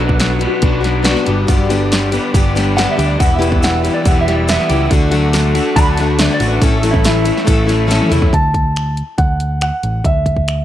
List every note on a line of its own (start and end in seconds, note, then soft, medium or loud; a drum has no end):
0.00 0.45 B1 loud
0.00 0.84 B2 medium
0.00 0.42 B2 medium
0.00 0.42 F#3 medium
0.00 0.41 B3 medium
0.00 0.42 B3 medium
0.00 0.40 D4 medium
0.00 1.07 D4 medium
0.00 0.38 F#4 medium
0.00 0.62 F#4 medium
0.00 4.87 B4 medium
0.00 0.18 B4 medium
0.00 1.23 F#5 soft
0.00 3.15 D6 medium
0.09 kick medium
0.18 0.63 F#3 medium
0.18 0.34 A4 medium
0.18 snare loud
0.18 closed hi-hat medium
0.34 0.46 F#4 medium
0.39 0.61 B3 soft
0.39 0.62 D4 soft
0.39 0.62 F#4 medium
0.39 closed hi-hat medium
0.47 1.73 F#4 medium
0.61 1.14 B1 loud
0.61 0.84 F#3 medium
0.61 0.83 B3 medium
0.61 0.82 D4 medium
0.61 0.79 F#4 medium
0.61 kick loud
0.61 closed hi-hat medium
0.81 1.03 B3 soft
0.81 1.03 D4 soft
0.81 1.04 F#4 medium
0.81 closed hi-hat medium
0.85 snare soft
1.03 1.26 B2 medium
1.03 1.26 F#3 medium
1.03 1.26 B3 medium
1.03 1.25 D4 medium
1.03 1.25 F#4 medium
1.03 snare loud
1.03 closed hi-hat medium
1.16 snare soft
1.25 1.45 G1 medium
1.25 1.48 G2 medium
1.25 1.46 G3 soft
1.25 1.47 B3 medium
1.25 1.47 D4 soft
1.25 1.47 G4 medium
1.25 4.86 D5 medium
1.25 closed hi-hat medium
1.47 2.17 G1 medium
1.47 1.69 G2 medium
1.47 1.70 D3 medium
1.47 1.70 G3 medium
1.47 1.70 B3 medium
1.47 1.69 D4 medium
1.47 1.68 G4 medium
1.47 kick loud
1.47 closed hi-hat medium
1.47 shaker medium
1.69 2.14 G2 medium
1.69 2.13 D3 medium
1.69 2.14 G3 medium
1.69 2.13 B3 medium
1.69 2.12 D4 medium
1.69 2.11 G4 medium
1.69 closed hi-hat medium
1.69 shaker medium
1.92 2.34 G3 medium
1.92 snare loud
1.92 closed hi-hat medium
1.92 shaker medium
2.12 2.33 G3 medium
2.12 2.34 B3 medium
2.12 2.34 D4 medium
2.12 2.34 G4 medium
2.12 closed hi-hat medium
2.12 shaker medium
2.34 2.85 G1 medium
2.34 2.56 G3 medium
2.34 2.55 B3 medium
2.34 2.55 D4 medium
2.34 2.54 G4 medium
2.34 kick loud
2.34 closed hi-hat medium
2.34 shaker medium
2.55 2.76 G3 soft
2.55 2.76 B3 soft
2.55 2.76 D4 medium
2.55 2.77 G4 medium
2.55 snare soft
2.55 closed hi-hat medium
2.55 shaker medium
2.76 2.98 G2 medium
2.76 2.98 D3 medium
2.76 2.98 G3 medium
2.76 2.97 B3 medium
2.76 2.96 D4 medium
2.76 2.95 G4 medium
2.76 2.91 F#5 medium
2.76 snare loud
2.76 closed hi-hat medium
2.76 shaker loud
2.91 3.06 E5 medium
2.97 3.16 D2 medium
2.97 3.19 G3 soft
2.97 3.18 B3 soft
2.97 3.19 D4 medium
2.97 3.19 G4 medium
2.97 closed hi-hat medium
2.97 shaker medium
3.06 3.20 D5 medium
3.19 3.88 E1 loud
3.19 4.27 E2 medium
3.19 3.39 E3 medium
3.19 3.38 B3 medium
3.19 3.38 E4 medium
3.19 3.37 G4 medium
3.19 3.35 F#5 medium
3.19 4.90 E6 medium
3.19 kick loud
3.19 closed hi-hat medium
3.19 shaker medium
3.35 3.82 G4 medium
3.35 3.49 E5 medium
3.39 4.48 B2 medium
3.39 3.83 E3 soft
3.39 3.83 B3 medium
3.39 3.83 E4 medium
3.39 closed hi-hat medium
3.39 shaker medium
3.49 3.62 D5 medium
3.49 kick medium
3.63 4.06 E3 medium
3.63 3.78 F#5 medium
3.63 snare loud
3.63 closed hi-hat medium
3.63 shaker medium
3.78 3.91 E5 medium
3.84 4.26 G3 medium
3.84 4.04 B3 soft
3.84 4.05 E4 medium
3.84 4.05 G4 medium
3.84 closed hi-hat medium
3.84 shaker medium
3.94 4.06 D5 medium
4.04 4.57 E1 loud
4.04 4.26 E3 medium
4.04 4.27 B3 medium
4.04 4.27 E4 medium
4.04 4.27 G4 medium
4.04 kick loud
4.04 closed hi-hat medium
4.04 shaker medium
4.08 4.20 F#5 medium
4.21 4.34 E5 medium
4.27 4.91 G3 medium
4.27 4.47 B3 soft
4.27 4.48 E4 soft
4.27 4.49 G4 medium
4.27 snare soft
4.27 closed hi-hat medium
4.36 4.49 D5 medium
4.47 4.69 E3 medium
4.47 4.70 B3 medium
4.47 4.70 E4 medium
4.47 4.68 G4 medium
4.47 4.90 E5 medium
4.47 snare loud
4.47 closed hi-hat medium
4.47 shaker medium
4.60 snare soft
4.69 4.87 C#2 medium
4.69 4.92 B3 soft
4.69 4.92 E4 soft
4.69 4.91 G4 medium
4.69 closed hi-hat medium
4.69 shaker medium
4.90 5.59 D2 loud
4.90 5.12 D3 medium
4.90 5.12 F#3 medium
4.90 5.11 A3 medium
4.90 5.11 D4 medium
4.90 5.10 F#4 medium
4.90 8.31 A4 medium
4.90 6.61 F#5 medium
4.90 6.62 D6 medium
4.90 kick loud
4.90 closed hi-hat medium
4.90 shaker medium
5.11 5.56 D3 medium
5.11 5.55 F#3 medium
5.11 5.57 A3 medium
5.11 5.55 D4 medium
5.11 5.54 F#4 medium
5.11 closed hi-hat medium
5.11 shaker medium
5.33 5.75 D3 medium
5.33 snare loud
5.33 closed hi-hat medium
5.33 shaker medium
5.55 5.77 A3 medium
5.55 5.77 D4 medium
5.55 5.76 F#4 medium
5.55 closed hi-hat medium
5.55 shaker medium
5.76 6.27 D2 loud
5.76 6.62 D3 medium
5.76 5.98 F#3 medium
5.76 5.98 A3 medium
5.76 5.99 D4 medium
5.76 5.99 F#4 medium
5.76 5.90 B5 loud
5.76 kick loud
5.76 closed hi-hat medium
5.76 shaker medium
5.91 6.05 A5 loud
5.97 6.20 D4 medium
5.97 6.20 F#4 medium
5.97 snare soft
5.97 closed hi-hat medium
5.97 shaker medium
6.02 6.20 A3 soft
6.02 6.19 F#5 medium
6.19 6.41 D3 medium
6.19 6.41 F#3 medium
6.19 6.41 A3 medium
6.19 6.41 D4 medium
6.19 6.39 F#4 medium
6.19 6.33 E5 medium
6.19 snare loud
6.19 closed hi-hat loud
6.19 shaker medium
6.31 6.48 D5 medium
6.31 snare soft
6.40 6.57 A1 medium
6.40 6.61 A3 soft
6.40 6.63 D4 soft
6.40 6.62 F#4 medium
6.40 closed hi-hat medium
6.40 shaker medium
6.48 6.61 B4 medium
6.61 7.30 A1 loud
6.61 6.83 A2 medium
6.61 6.83 E3 medium
6.61 6.83 A3 medium
6.61 6.83 C#4 medium
6.61 6.82 E4 medium
6.61 6.77 A4 medium
6.61 6.82 A4 medium
6.61 8.33 E5 medium
6.61 8.32 C#6 medium
6.61 kick loud
6.61 closed hi-hat loud
6.61 shaker loud
6.77 6.91 F#4 medium
6.83 7.27 A2 medium
6.83 7.27 E3 medium
6.83 7.26 A3 medium
6.83 7.26 C#4 medium
6.83 7.25 E4 medium
6.83 7.23 A4 medium
6.83 closed hi-hat medium
6.83 shaker medium
6.91 7.04 E4 medium
6.91 kick medium
7.04 7.47 E3 medium
7.04 7.47 E4 loud
7.04 snare loud
7.04 closed hi-hat medium
7.04 shaker medium
7.24 7.43 A3 soft
7.24 7.44 C#4 medium
7.24 7.45 E4 medium
7.24 7.46 A4 medium
7.24 closed hi-hat medium
7.24 shaker medium
7.37 snare soft
7.45 7.99 A1 loud
7.45 8.33 E3 medium
7.45 7.67 A3 medium
7.45 7.66 C#4 medium
7.45 7.66 E4 medium
7.45 7.64 A4 medium
7.45 kick loud
7.45 closed hi-hat medium
7.45 shaker loud
7.65 7.87 A3 medium
7.65 7.87 C#4 soft
7.65 7.87 E4 medium
7.65 7.87 A4 medium
7.65 closed hi-hat medium
7.65 shaker medium
7.70 snare soft
7.87 8.10 A2 medium
7.87 8.10 E3 medium
7.87 8.10 A3 medium
7.87 8.10 C#4 medium
7.87 8.09 E4 medium
7.87 8.08 A4 medium
7.87 closed hi-hat medium
7.87 shaker loud
7.92 snare medium
8.01 mid tom medium
8.09 8.29 E2 medium
8.09 8.33 A3 soft
8.09 8.33 C#4 medium
8.09 8.33 E4 medium
8.09 8.32 A4 medium
8.09 closed hi-hat medium
8.09 mid tom medium
8.09 shaker medium
8.22 kick medium
8.33 9.01 D2 medium
8.33 8.94 A5 medium
8.33 kick medium
8.33 closed hi-hat medium
8.54 kick medium
8.54 closed hi-hat soft
8.76 finger snap medium
8.76 closed hi-hat medium
8.97 closed hi-hat soft
9.18 9.70 D2 medium
9.18 9.60 F#5 medium
9.18 kick medium
9.18 closed hi-hat medium
9.40 closed hi-hat medium
9.61 10.06 F#5 medium
9.61 finger snap medium
9.61 closed hi-hat medium
9.83 10.01 A1 medium
9.83 closed hi-hat soft
10.04 10.65 D2 medium
10.04 10.65 E5 medium
10.04 kick medium
10.04 closed hi-hat medium
10.26 kick medium
10.26 closed hi-hat soft
10.37 kick medium
10.48 finger snap medium
10.48 closed hi-hat medium